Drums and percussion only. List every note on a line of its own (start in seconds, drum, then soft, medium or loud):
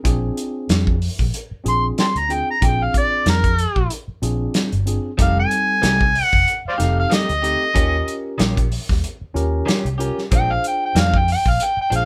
0.05 kick loud
0.05 closed hi-hat medium
0.37 closed hi-hat medium
0.69 snare loud
0.69 closed hi-hat medium
0.87 kick medium
1.02 open hi-hat medium
1.19 kick medium
1.34 closed hi-hat medium
1.66 closed hi-hat medium
1.98 snare medium
1.98 closed hi-hat medium
2.16 closed hi-hat soft
2.30 closed hi-hat medium
2.62 kick loud
2.62 closed hi-hat medium
2.94 kick medium
2.94 closed hi-hat medium
3.26 snare loud
3.26 closed hi-hat medium
3.44 kick medium
3.44 closed hi-hat soft
3.58 closed hi-hat medium
3.76 kick medium
3.90 closed hi-hat medium
4.23 closed hi-hat medium
4.54 snare loud
4.54 closed hi-hat medium
4.72 closed hi-hat soft
4.87 closed hi-hat medium
5.19 kick loud
5.19 closed hi-hat medium
5.51 closed hi-hat medium
5.83 snare loud
5.83 closed hi-hat medium
6.01 kick medium
6.15 open hi-hat medium
6.33 kick medium
6.48 closed hi-hat medium
6.80 snare soft
6.80 closed hi-hat medium
7.11 snare loud
7.11 closed hi-hat medium
7.29 closed hi-hat soft
7.44 closed hi-hat medium
7.76 kick loud
7.76 closed hi-hat medium
8.08 closed hi-hat medium
8.39 snare loud
8.39 closed hi-hat medium
8.57 kick medium
8.57 closed hi-hat soft
8.72 open hi-hat medium
8.89 kick medium
8.89 snare soft
9.04 closed hi-hat medium
9.36 closed hi-hat medium
9.68 snare loud
9.68 closed hi-hat medium
9.86 closed hi-hat soft
10.00 closed hi-hat medium
10.18 snare soft
10.32 kick loud
10.32 closed hi-hat medium
10.64 closed hi-hat medium
10.96 snare loud
10.96 closed hi-hat medium
11.14 kick medium
11.28 open hi-hat medium
11.46 kick medium
11.60 closed hi-hat medium
11.92 closed hi-hat medium